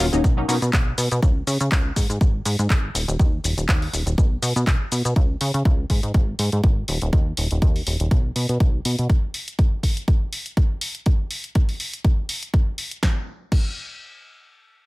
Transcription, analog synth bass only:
0.00 0.10 D#1 medium
0.13 0.22 D#1 medium
0.24 0.44 B1 medium
0.48 0.59 B2 medium
0.62 0.71 B2 medium
0.73 0.94 B1 medium
0.98 1.09 B2 medium
1.12 1.20 B2 medium
1.23 1.43 C#2 medium
1.47 1.58 C#3 medium
1.61 1.69 C#3 medium
1.72 1.92 C#2 loud
1.96 2.07 G#2 medium
2.09 2.19 G#2 medium
2.21 2.41 G#1 medium
2.46 2.56 G#2 medium
2.59 2.68 G#2 medium
2.70 2.90 G#1 medium
2.95 3.05 D#1 medium
3.08 3.17 D#1 medium
3.19 3.40 D#2 medium
3.44 3.55 D#1 medium
3.57 3.66 D#1 medium
3.69 3.89 D#2 loud
3.93 4.04 D#1 medium
4.06 4.15 D#1 medium
4.18 4.38 B1 medium
4.42 4.53 B2 medium
4.56 4.65 B2 loud
4.67 4.78 B1 medium
4.92 5.02 B2 medium
5.05 5.14 B2 medium
5.16 5.36 C#2 loud
5.41 5.52 C#3 medium
5.54 5.63 C#3 medium
5.65 5.85 C#2 loud
5.90 6.01 G#2 medium
6.03 6.12 G#2 medium
6.14 6.35 G#1 medium
6.39 6.50 G#2 medium
6.53 6.61 G#2 medium
6.64 6.84 G#1 medium
6.88 6.99 D#1 medium
7.02 7.11 D#1 medium
7.13 7.33 D#2 medium
7.38 7.48 D#1 medium
7.51 7.60 D#1 medium
7.62 7.82 D#2 loud
7.87 7.97 D#1 medium
8.00 8.09 D#1 medium
8.11 8.31 B1 medium
8.36 8.46 B2 medium
8.49 8.58 B2 medium
8.60 8.80 B1 medium
8.85 8.96 B2 medium
8.99 9.07 B2 medium

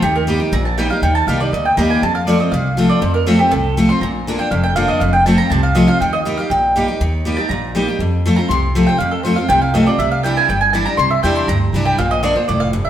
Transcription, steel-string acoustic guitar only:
0.02 0.50 D#3 medium
0.27 0.40 G3 medium
0.27 0.40 A#3 medium
0.27 0.40 D#4 medium
0.27 0.38 G4 medium
0.40 0.53 D#4 soft
0.40 0.52 G4 medium
0.53 1.00 A#2 loud
0.78 0.90 G3 medium
0.78 0.90 A#3 medium
0.78 0.90 D#4 medium
0.78 0.90 G4 medium
0.91 1.03 D#4 medium
0.91 1.02 G4 medium
1.03 1.50 D#3 medium
1.28 1.40 G3 medium
1.28 1.40 A#3 medium
1.28 1.40 D#4 medium
1.28 1.39 G4 medium
1.40 1.53 D#4 soft
1.40 1.52 G4 medium
1.54 2.01 A#2 medium
1.77 2.01 G3 medium
1.77 2.02 A#3 medium
1.77 2.02 D#4 loud
1.77 2.02 G4 loud
2.03 2.50 F2 medium
2.27 2.39 F3 medium
2.27 2.40 A3 loud
2.27 2.40 C4 medium
2.27 2.39 F4 loud
2.40 2.53 C4 soft
2.40 2.52 F4 medium
2.54 3.00 C3 medium
2.77 3.01 F3 medium
2.77 3.01 A3 medium
2.77 3.01 C4 medium
2.77 3.01 F4 medium
3.02 3.49 F2 medium
3.27 3.39 F3 medium
3.27 3.39 A3 medium
3.27 3.39 C4 loud
3.27 3.37 F4 medium
3.39 3.52 C4 soft
3.39 3.51 F4 medium
3.51 3.99 C3 loud
3.77 3.89 F3 medium
3.77 3.89 A3 medium
3.77 3.89 C4 loud
3.77 3.89 F4 loud
3.90 4.02 C4 medium
3.90 4.01 F4 medium
4.03 4.50 A#2 medium
4.27 4.39 D3 medium
4.27 4.39 A#3 medium
4.27 4.39 D4 loud
4.27 4.37 F4 loud
4.39 4.51 D4 soft
4.39 4.51 F4 medium
4.52 4.99 F2 medium
4.76 5.00 D3 medium
4.76 5.00 A#3 medium
4.76 5.00 D4 loud
4.76 5.00 F4 loud
5.01 5.48 F2 medium
5.26 5.38 F3 medium
5.26 5.38 A3 medium
5.26 5.39 C4 loud
5.26 5.37 F4 medium
5.39 5.51 C4 soft
5.39 5.50 F4 medium
5.52 5.98 C3 loud
5.75 5.87 F3 medium
5.75 5.88 A3 medium
5.75 5.88 C4 loud
5.75 5.87 F4 loud
5.88 6.01 C4 soft
5.88 6.00 F4 medium
6.02 6.48 D#3 medium
6.25 6.37 G3 medium
6.25 6.38 A#3 medium
6.25 6.38 D#4 medium
6.25 6.38 G4 loud
6.39 6.51 D#4 soft
6.39 6.50 G4 medium
6.51 6.98 A#2 medium
6.76 6.88 G3 loud
6.76 6.88 A#3 medium
6.76 6.88 D#4 loud
6.76 6.87 G4 medium
6.88 7.01 D#4 soft
6.88 7.00 G4 medium
7.01 7.48 D#3 medium
7.25 7.37 G3 medium
7.25 7.38 A#3 medium
7.25 7.38 D#4 medium
7.25 7.37 G4 medium
7.38 7.50 D#4 medium
7.38 7.50 G4 medium
7.51 7.98 A#2 medium
7.75 7.87 G3 loud
7.75 7.87 A#3 medium
7.75 7.87 D#4 medium
7.75 7.87 G4 loud
7.90 8.01 D#4 medium
8.00 8.47 F2 medium
8.26 8.37 F3 medium
8.26 8.38 A3 medium
8.26 8.38 C4 loud
8.26 8.37 F4 medium
8.39 8.50 C4 soft
8.39 8.50 F4 medium
8.51 8.98 C3 loud
8.75 8.87 F3 loud
8.75 8.87 A3 loud
8.75 8.87 C4 loud
8.75 8.87 F4 medium
8.88 9.00 C4 soft
8.88 9.00 F4 medium
9.00 9.47 F2 medium
9.25 9.37 F3 medium
9.25 9.37 A3 medium
9.25 9.37 C4 medium
9.25 9.37 F4 medium
9.38 9.50 C4 soft
9.38 9.49 F4 medium
9.50 9.97 C3 loud
9.74 9.86 F3 medium
9.74 9.87 A3 loud
9.74 9.87 C4 medium
9.74 9.85 F4 medium
9.86 9.99 C4 soft
9.86 9.98 F4 medium
10.00 10.47 C3 medium
10.24 10.48 E3 medium
10.24 10.48 G3 medium
10.24 10.48 D4 loud
10.24 10.49 E4 loud
10.50 10.97 G2 medium
10.74 10.86 E3 medium
10.74 10.86 G3 medium
10.74 10.86 D4 loud
10.74 10.86 E4 medium
10.87 10.99 D4 soft
10.87 10.98 E4 medium
10.99 11.46 C3 medium
11.23 11.47 E3 medium
11.23 11.47 G3 medium
11.23 11.48 D4 medium
11.23 11.48 E4 loud
11.49 11.96 G2 loud
11.74 11.97 E3 medium
11.74 11.98 G3 medium
11.74 11.98 D4 medium
11.74 11.98 E4 loud
11.99 12.46 A#2 medium
12.23 12.35 D3 medium
12.23 12.35 A#3 loud
12.23 12.36 D4 medium
12.23 12.34 F4 medium
12.36 12.48 D4 soft
12.36 12.48 F4 medium
12.49 12.72 A2 medium
12.73 12.90 G2 medium

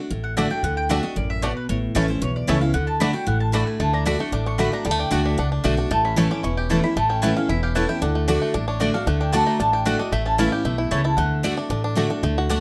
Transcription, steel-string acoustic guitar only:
0.00 0.11 D4 soft
0.10 0.61 A2 medium
0.37 0.50 D3 medium
0.37 0.50 A3 medium
0.37 0.51 D4 medium
0.37 0.49 F#4 medium
0.50 0.64 D4 soft
0.50 0.63 F#4 medium
0.64 0.88 D3 medium
0.89 1.03 D3 medium
0.89 1.03 A3 loud
0.89 1.03 D4 loud
0.89 1.02 F#4 loud
1.03 1.16 D4 soft
1.03 1.16 F#4 medium
1.16 1.41 F#2 medium
1.42 1.68 B2 medium
1.69 2.19 A2 medium
1.95 2.08 E3 loud
1.95 2.08 A3 loud
1.95 2.09 C#4 loud
1.95 2.07 E4 loud
2.08 2.22 C#4 medium
2.08 2.21 E4 medium
2.22 2.72 E2 medium
2.47 2.61 E3 medium
2.47 2.61 A3 medium
2.47 2.61 C#4 loud
2.47 2.60 E4 medium
2.61 2.75 C#4 medium
2.61 2.74 E4 medium
2.74 2.99 D3 loud
3.00 3.13 D3 loud
3.00 3.14 A3 loud
3.00 3.14 D4 loud
3.00 3.12 F#4 loud
3.13 3.27 D4 soft
3.13 3.26 F#4 medium
3.27 3.77 A2 medium
3.52 3.78 D3 medium
3.52 3.79 A3 medium
3.52 3.79 D4 medium
3.52 3.79 F#4 loud
3.80 4.04 D3 medium
4.06 4.19 D3 medium
4.06 4.19 A3 medium
4.06 4.20 D4 loud
4.06 4.18 F#4 loud
4.19 4.33 D4 soft
4.19 4.32 F#4 medium
4.32 4.83 A2 medium
4.59 4.72 D3 medium
4.59 4.72 A3 medium
4.59 4.72 D4 medium
4.59 4.71 F#4 loud
4.72 4.85 D4 medium
4.72 4.85 F#4 medium
4.85 5.09 D3 medium
5.11 5.36 D3 medium
5.11 5.37 A3 loud
5.11 5.37 D4 loud
5.11 5.37 F#4 loud
5.38 5.88 A2 medium
5.64 5.77 D3 medium
5.64 5.77 A3 medium
5.64 5.78 D4 medium
5.64 5.76 F#4 loud
5.77 5.91 D4 soft
5.77 5.90 F#4 medium
5.91 6.41 A2 loud
6.16 6.30 E3 loud
6.16 6.30 A3 loud
6.16 6.30 C#4 loud
6.16 6.29 E4 loud
6.31 6.44 C#4 medium
6.31 6.43 E4 medium
6.44 6.94 E2 medium
6.70 6.83 E3 medium
6.70 6.83 A3 medium
6.70 6.83 C#4 medium
6.70 6.82 E4 medium
6.83 6.97 C#4 soft
6.83 6.96 E4 medium
6.97 7.47 A2 medium
7.23 7.36 E3 medium
7.23 7.36 A3 loud
7.23 7.36 C#4 loud
7.23 7.35 E4 loud
7.36 7.49 C#4 medium
7.36 7.49 E4 medium
7.49 7.99 E2 medium
7.75 7.88 E3 medium
7.75 7.89 A3 medium
7.75 7.89 C#4 medium
7.75 7.88 E4 medium
7.89 8.02 C#4 soft
7.89 8.01 E4 medium
8.02 8.27 D3 medium
8.28 8.53 D3 loud
8.28 8.53 A3 loud
8.28 8.54 D4 loud
8.28 8.54 F#4 loud
8.54 9.04 A2 medium
8.81 8.94 D3 medium
8.81 8.94 A3 medium
8.81 8.94 D4 medium
8.81 8.93 F#4 medium
8.94 9.08 D4 soft
8.94 9.07 F#4 medium
9.07 9.32 D3 medium
9.33 9.58 D3 medium
9.33 9.59 A3 loud
9.33 9.59 D4 loud
9.33 9.59 F#4 loud
9.60 10.10 A2 medium
9.85 9.99 D3 medium
9.85 9.99 A3 medium
9.85 9.99 D4 medium
9.85 9.98 F#4 loud
9.99 10.13 D4 soft
9.99 10.12 F#4 medium
10.13 10.63 A2 medium
10.38 10.52 E3 loud
10.38 10.52 A3 loud
10.38 10.52 C#4 loud
10.38 10.50 E4 loud
10.52 10.65 C#4 soft
10.52 10.64 E4 medium
10.65 10.90 B2 medium
10.91 11.17 C#3 medium
11.18 11.43 D3 medium
11.44 11.57 D3 loud
11.44 11.57 A3 loud
11.44 11.57 D4 loud
11.44 11.55 F#4 loud
11.57 11.71 D4 medium
11.57 11.70 F#4 medium
11.70 12.21 A2 medium
11.95 12.09 D3 medium
11.95 12.10 A3 loud
11.95 12.10 D4 medium
11.95 12.09 F#4 medium
12.10 12.23 D4 soft
12.10 12.23 F#4 medium
12.23 12.48 D3 medium
12.50 12.60 D3 loud
12.50 12.60 A3 medium
12.50 12.60 D4 loud
12.50 12.60 F#4 loud

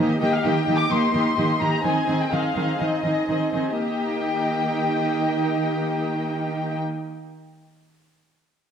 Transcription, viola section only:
0.00 0.20 A#3 soft
0.00 0.20 D#4 soft
0.22 0.43 A#3 soft
0.22 0.43 D#4 soft
0.45 0.66 A#3 soft
0.45 0.66 D#4 soft
0.67 0.89 A#3 soft
0.67 0.89 D#4 soft
0.90 1.13 A#3 soft
0.90 1.13 D#4 soft
1.14 1.36 A#3 soft
1.14 1.36 D#4 soft
1.37 1.59 A#3 soft
1.37 1.59 D#4 soft
1.61 1.84 A#3 soft
1.61 1.83 D#4 soft
1.84 2.06 C4 soft
1.84 2.06 D#4 soft
2.08 2.31 C4 soft
2.08 2.31 D#4 soft
2.32 2.55 C4 soft
2.32 2.55 D#4 soft
2.56 2.79 C4 soft
2.56 2.79 D#4 soft
2.80 3.04 C4 soft
2.80 3.04 D#4 soft
3.05 3.28 C4 soft
3.05 3.28 D#4 soft
3.30 3.54 C4 soft
3.30 3.54 D#4 soft
3.55 3.79 C4 soft
3.55 3.79 D#4 soft
3.80 6.79 A#3 soft
3.80 6.79 D#4 soft

